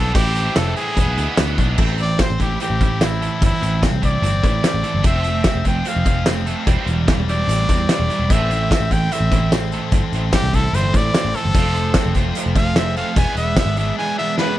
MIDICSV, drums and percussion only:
0, 0, Header, 1, 2, 480
1, 0, Start_track
1, 0, Key_signature, 0, "minor"
1, 0, Tempo, 406504
1, 181, Time_signature, 4, 2, 24, 8
1, 17227, End_track
2, 0, Start_track
2, 0, Title_t, "Drums"
2, 173, Note_on_c, 9, 42, 94
2, 177, Note_on_c, 9, 36, 126
2, 292, Note_off_c, 9, 42, 0
2, 295, Note_off_c, 9, 36, 0
2, 418, Note_on_c, 9, 42, 65
2, 536, Note_off_c, 9, 42, 0
2, 659, Note_on_c, 9, 38, 107
2, 659, Note_on_c, 9, 42, 90
2, 659, Note_on_c, 9, 54, 112
2, 777, Note_off_c, 9, 38, 0
2, 777, Note_off_c, 9, 42, 0
2, 777, Note_off_c, 9, 54, 0
2, 903, Note_on_c, 9, 42, 64
2, 1021, Note_off_c, 9, 42, 0
2, 1143, Note_on_c, 9, 36, 82
2, 1144, Note_on_c, 9, 42, 85
2, 1262, Note_off_c, 9, 36, 0
2, 1262, Note_off_c, 9, 42, 0
2, 1390, Note_on_c, 9, 42, 68
2, 1508, Note_off_c, 9, 42, 0
2, 1623, Note_on_c, 9, 38, 112
2, 1623, Note_on_c, 9, 42, 103
2, 1623, Note_on_c, 9, 54, 111
2, 1741, Note_off_c, 9, 38, 0
2, 1741, Note_off_c, 9, 42, 0
2, 1741, Note_off_c, 9, 54, 0
2, 1865, Note_on_c, 9, 42, 67
2, 1866, Note_on_c, 9, 36, 81
2, 1983, Note_off_c, 9, 42, 0
2, 1985, Note_off_c, 9, 36, 0
2, 2098, Note_on_c, 9, 49, 103
2, 2107, Note_on_c, 9, 36, 118
2, 2216, Note_off_c, 9, 49, 0
2, 2225, Note_off_c, 9, 36, 0
2, 2338, Note_on_c, 9, 42, 64
2, 2456, Note_off_c, 9, 42, 0
2, 2586, Note_on_c, 9, 38, 108
2, 2586, Note_on_c, 9, 42, 87
2, 2586, Note_on_c, 9, 54, 111
2, 2589, Note_on_c, 9, 36, 80
2, 2704, Note_off_c, 9, 38, 0
2, 2704, Note_off_c, 9, 42, 0
2, 2704, Note_off_c, 9, 54, 0
2, 2708, Note_off_c, 9, 36, 0
2, 2831, Note_on_c, 9, 36, 71
2, 2831, Note_on_c, 9, 42, 56
2, 2950, Note_off_c, 9, 36, 0
2, 2950, Note_off_c, 9, 42, 0
2, 3072, Note_on_c, 9, 42, 80
2, 3190, Note_off_c, 9, 42, 0
2, 3316, Note_on_c, 9, 36, 82
2, 3318, Note_on_c, 9, 42, 58
2, 3434, Note_off_c, 9, 36, 0
2, 3436, Note_off_c, 9, 42, 0
2, 3555, Note_on_c, 9, 38, 110
2, 3555, Note_on_c, 9, 42, 85
2, 3555, Note_on_c, 9, 54, 113
2, 3673, Note_off_c, 9, 38, 0
2, 3673, Note_off_c, 9, 42, 0
2, 3673, Note_off_c, 9, 54, 0
2, 3807, Note_on_c, 9, 42, 66
2, 3925, Note_off_c, 9, 42, 0
2, 4038, Note_on_c, 9, 36, 112
2, 4038, Note_on_c, 9, 42, 97
2, 4156, Note_off_c, 9, 36, 0
2, 4156, Note_off_c, 9, 42, 0
2, 4284, Note_on_c, 9, 42, 66
2, 4402, Note_off_c, 9, 42, 0
2, 4519, Note_on_c, 9, 36, 89
2, 4524, Note_on_c, 9, 38, 117
2, 4524, Note_on_c, 9, 42, 96
2, 4524, Note_on_c, 9, 54, 101
2, 4637, Note_off_c, 9, 36, 0
2, 4642, Note_off_c, 9, 38, 0
2, 4642, Note_off_c, 9, 42, 0
2, 4642, Note_off_c, 9, 54, 0
2, 4758, Note_on_c, 9, 36, 71
2, 4761, Note_on_c, 9, 42, 65
2, 4876, Note_off_c, 9, 36, 0
2, 4879, Note_off_c, 9, 42, 0
2, 4999, Note_on_c, 9, 42, 87
2, 5117, Note_off_c, 9, 42, 0
2, 5237, Note_on_c, 9, 36, 80
2, 5241, Note_on_c, 9, 42, 71
2, 5355, Note_off_c, 9, 36, 0
2, 5359, Note_off_c, 9, 42, 0
2, 5478, Note_on_c, 9, 38, 108
2, 5478, Note_on_c, 9, 42, 91
2, 5478, Note_on_c, 9, 54, 106
2, 5596, Note_off_c, 9, 38, 0
2, 5596, Note_off_c, 9, 42, 0
2, 5596, Note_off_c, 9, 54, 0
2, 5713, Note_on_c, 9, 42, 63
2, 5831, Note_off_c, 9, 42, 0
2, 5950, Note_on_c, 9, 42, 103
2, 5955, Note_on_c, 9, 36, 115
2, 6068, Note_off_c, 9, 42, 0
2, 6073, Note_off_c, 9, 36, 0
2, 6189, Note_on_c, 9, 42, 62
2, 6307, Note_off_c, 9, 42, 0
2, 6425, Note_on_c, 9, 38, 107
2, 6425, Note_on_c, 9, 42, 85
2, 6425, Note_on_c, 9, 54, 118
2, 6433, Note_on_c, 9, 36, 82
2, 6543, Note_off_c, 9, 38, 0
2, 6543, Note_off_c, 9, 42, 0
2, 6543, Note_off_c, 9, 54, 0
2, 6551, Note_off_c, 9, 36, 0
2, 6670, Note_on_c, 9, 42, 64
2, 6673, Note_on_c, 9, 36, 71
2, 6788, Note_off_c, 9, 42, 0
2, 6791, Note_off_c, 9, 36, 0
2, 6910, Note_on_c, 9, 42, 84
2, 7028, Note_off_c, 9, 42, 0
2, 7150, Note_on_c, 9, 42, 67
2, 7154, Note_on_c, 9, 36, 83
2, 7268, Note_off_c, 9, 42, 0
2, 7272, Note_off_c, 9, 36, 0
2, 7391, Note_on_c, 9, 38, 104
2, 7391, Note_on_c, 9, 42, 88
2, 7391, Note_on_c, 9, 54, 103
2, 7509, Note_off_c, 9, 38, 0
2, 7509, Note_off_c, 9, 42, 0
2, 7509, Note_off_c, 9, 54, 0
2, 7635, Note_on_c, 9, 42, 64
2, 7753, Note_off_c, 9, 42, 0
2, 7876, Note_on_c, 9, 36, 116
2, 7877, Note_on_c, 9, 42, 95
2, 7994, Note_off_c, 9, 36, 0
2, 7995, Note_off_c, 9, 42, 0
2, 8117, Note_on_c, 9, 42, 66
2, 8235, Note_off_c, 9, 42, 0
2, 8359, Note_on_c, 9, 36, 86
2, 8363, Note_on_c, 9, 38, 117
2, 8363, Note_on_c, 9, 42, 90
2, 8363, Note_on_c, 9, 54, 107
2, 8477, Note_off_c, 9, 36, 0
2, 8481, Note_off_c, 9, 38, 0
2, 8481, Note_off_c, 9, 42, 0
2, 8481, Note_off_c, 9, 54, 0
2, 8609, Note_on_c, 9, 42, 65
2, 8727, Note_off_c, 9, 42, 0
2, 8843, Note_on_c, 9, 42, 96
2, 8961, Note_off_c, 9, 42, 0
2, 9080, Note_on_c, 9, 36, 80
2, 9080, Note_on_c, 9, 42, 70
2, 9198, Note_off_c, 9, 36, 0
2, 9198, Note_off_c, 9, 42, 0
2, 9317, Note_on_c, 9, 38, 105
2, 9317, Note_on_c, 9, 42, 96
2, 9317, Note_on_c, 9, 54, 102
2, 9435, Note_off_c, 9, 38, 0
2, 9435, Note_off_c, 9, 42, 0
2, 9435, Note_off_c, 9, 54, 0
2, 9564, Note_on_c, 9, 42, 71
2, 9682, Note_off_c, 9, 42, 0
2, 9802, Note_on_c, 9, 36, 116
2, 9802, Note_on_c, 9, 42, 99
2, 9920, Note_off_c, 9, 36, 0
2, 9920, Note_off_c, 9, 42, 0
2, 10046, Note_on_c, 9, 42, 65
2, 10164, Note_off_c, 9, 42, 0
2, 10284, Note_on_c, 9, 36, 80
2, 10295, Note_on_c, 9, 38, 106
2, 10295, Note_on_c, 9, 42, 94
2, 10295, Note_on_c, 9, 54, 116
2, 10402, Note_off_c, 9, 36, 0
2, 10413, Note_off_c, 9, 38, 0
2, 10413, Note_off_c, 9, 42, 0
2, 10413, Note_off_c, 9, 54, 0
2, 10522, Note_on_c, 9, 36, 71
2, 10525, Note_on_c, 9, 42, 67
2, 10640, Note_off_c, 9, 36, 0
2, 10643, Note_off_c, 9, 42, 0
2, 10765, Note_on_c, 9, 42, 88
2, 10883, Note_off_c, 9, 42, 0
2, 11001, Note_on_c, 9, 36, 80
2, 11008, Note_on_c, 9, 42, 66
2, 11119, Note_off_c, 9, 36, 0
2, 11126, Note_off_c, 9, 42, 0
2, 11242, Note_on_c, 9, 38, 113
2, 11242, Note_on_c, 9, 42, 86
2, 11242, Note_on_c, 9, 54, 114
2, 11360, Note_off_c, 9, 38, 0
2, 11360, Note_off_c, 9, 42, 0
2, 11360, Note_off_c, 9, 54, 0
2, 11476, Note_on_c, 9, 42, 64
2, 11594, Note_off_c, 9, 42, 0
2, 11712, Note_on_c, 9, 42, 89
2, 11716, Note_on_c, 9, 36, 112
2, 11830, Note_off_c, 9, 42, 0
2, 11834, Note_off_c, 9, 36, 0
2, 11959, Note_on_c, 9, 42, 70
2, 12077, Note_off_c, 9, 42, 0
2, 12194, Note_on_c, 9, 38, 112
2, 12194, Note_on_c, 9, 42, 95
2, 12194, Note_on_c, 9, 54, 105
2, 12197, Note_on_c, 9, 36, 88
2, 12312, Note_off_c, 9, 38, 0
2, 12312, Note_off_c, 9, 42, 0
2, 12312, Note_off_c, 9, 54, 0
2, 12315, Note_off_c, 9, 36, 0
2, 12439, Note_on_c, 9, 36, 70
2, 12443, Note_on_c, 9, 42, 67
2, 12557, Note_off_c, 9, 36, 0
2, 12561, Note_off_c, 9, 42, 0
2, 12684, Note_on_c, 9, 42, 86
2, 12802, Note_off_c, 9, 42, 0
2, 12918, Note_on_c, 9, 36, 90
2, 12921, Note_on_c, 9, 42, 66
2, 13037, Note_off_c, 9, 36, 0
2, 13039, Note_off_c, 9, 42, 0
2, 13160, Note_on_c, 9, 38, 113
2, 13160, Note_on_c, 9, 42, 97
2, 13160, Note_on_c, 9, 54, 110
2, 13278, Note_off_c, 9, 38, 0
2, 13278, Note_off_c, 9, 42, 0
2, 13278, Note_off_c, 9, 54, 0
2, 13398, Note_on_c, 9, 42, 68
2, 13516, Note_off_c, 9, 42, 0
2, 13633, Note_on_c, 9, 42, 100
2, 13634, Note_on_c, 9, 36, 118
2, 13751, Note_off_c, 9, 42, 0
2, 13752, Note_off_c, 9, 36, 0
2, 13871, Note_on_c, 9, 42, 72
2, 13989, Note_off_c, 9, 42, 0
2, 14099, Note_on_c, 9, 38, 112
2, 14099, Note_on_c, 9, 42, 92
2, 14099, Note_on_c, 9, 54, 110
2, 14107, Note_on_c, 9, 36, 85
2, 14217, Note_off_c, 9, 38, 0
2, 14217, Note_off_c, 9, 42, 0
2, 14217, Note_off_c, 9, 54, 0
2, 14226, Note_off_c, 9, 36, 0
2, 14341, Note_on_c, 9, 42, 65
2, 14346, Note_on_c, 9, 36, 73
2, 14459, Note_off_c, 9, 42, 0
2, 14465, Note_off_c, 9, 36, 0
2, 14585, Note_on_c, 9, 42, 94
2, 14703, Note_off_c, 9, 42, 0
2, 14825, Note_on_c, 9, 36, 88
2, 14826, Note_on_c, 9, 42, 70
2, 14943, Note_off_c, 9, 36, 0
2, 14944, Note_off_c, 9, 42, 0
2, 15066, Note_on_c, 9, 38, 115
2, 15066, Note_on_c, 9, 42, 90
2, 15066, Note_on_c, 9, 54, 109
2, 15184, Note_off_c, 9, 38, 0
2, 15184, Note_off_c, 9, 42, 0
2, 15184, Note_off_c, 9, 54, 0
2, 15310, Note_on_c, 9, 42, 70
2, 15428, Note_off_c, 9, 42, 0
2, 15544, Note_on_c, 9, 36, 127
2, 15544, Note_on_c, 9, 42, 98
2, 15662, Note_off_c, 9, 36, 0
2, 15662, Note_off_c, 9, 42, 0
2, 15785, Note_on_c, 9, 42, 68
2, 15903, Note_off_c, 9, 42, 0
2, 16018, Note_on_c, 9, 36, 86
2, 16018, Note_on_c, 9, 38, 118
2, 16018, Note_on_c, 9, 42, 90
2, 16018, Note_on_c, 9, 54, 110
2, 16136, Note_off_c, 9, 38, 0
2, 16136, Note_off_c, 9, 42, 0
2, 16136, Note_off_c, 9, 54, 0
2, 16137, Note_off_c, 9, 36, 0
2, 16255, Note_on_c, 9, 42, 63
2, 16373, Note_off_c, 9, 42, 0
2, 16976, Note_on_c, 9, 38, 62
2, 17094, Note_off_c, 9, 38, 0
2, 17227, End_track
0, 0, End_of_file